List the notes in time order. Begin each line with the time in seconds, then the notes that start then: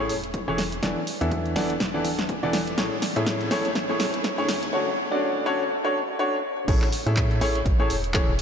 Already playing: A1
0.00 A2 A3 C#4 E4 G#4 C#5
0.09 E1, open hi-hat
0.24 closed hi-hat
0.34 kick, closed hi-hat
0.48 E1 E3 A3 C#4 E4 G#4 C#5
0.58 snare, open hi-hat
0.72 closed hi-hat
0.83 E1 E3 B3 D4 E4 A4 D5, kick, snare, closed hi-hat
1.07 open hi-hat
1.21 E2 E3 B3 D4 E4 A4 E5, closed hi-hat
1.31 kick, closed hi-hat
1.46 closed hi-hat
1.56 E1 E3 B3 D4 E4 A4 D5, snare, open hi-hat
1.70 closed hi-hat
1.80 E1, kick, snare, closed hi-hat
1.94 E3 B3 D4 E4 A4 D5
2.05 D1, kick, open hi-hat
2.19 snare, closed hi-hat
2.29 kick, closed hi-hat
2.43 E1 E3 B3 D4 E4 A4 D5
2.53 snare, open hi-hat
2.67 closed hi-hat
2.78 A1 A2 A3 C#4 E4 G#4 C#5, kick, snare, closed hi-hat
3.02 snare, open hi-hat
3.16 A2 A3 C#4 E4 G#4 E5, closed hi-hat
3.27 kick, snare, closed hi-hat
3.41 closed hi-hat
3.51 A1 A2 A3 C#4 E4 G#4 C#5, snare, open hi-hat
3.65 closed hi-hat
3.75 A1, kick, snare, closed hi-hat
3.89 A2 A3 C#4 E4 G#4 C#5
4.00 E1, snare, open hi-hat
4.14 closed hi-hat
4.24 kick, snare, closed hi-hat
4.38 D2 D3 A3 C#4 E4 G#4 C#5
4.49 snare, open hi-hat
4.63 closed hi-hat
4.73 D3 A3 C#4 D4 F#4 C#5
5.11 D3 A3 C#4 D4 F#4 D5
5.46 D3 A3 C#4 D4 F#4 C#5
5.85 D3 A3 C#4 D4 F#4 C#5
6.19 D3 A3 C#4 D4 F#4 C#5
6.68 A1 A2 A3 C#4 E4 G#4 C#5, kick, closed hi-hat, crash
6.82 clap
6.92 open hi-hat
7.07 A2 A3 C#4 E4 G#4 E5, closed hi-hat
7.17 kick, clap, closed hi-hat
7.31 closed hi-hat
7.41 A1 A2 A3 C#4 E4 G#4 C#5, open hi-hat
7.55 closed hi-hat
7.66 A1, kick, closed hi-hat
7.80 A2 A3 C#4 E4 G#4 C#5
7.90 E1, open hi-hat
8.04 closed hi-hat
8.14 E3 A3 C#4 E4 G#4 C#5, kick, clap, closed hi-hat
8.28 E1
8.39 open hi-hat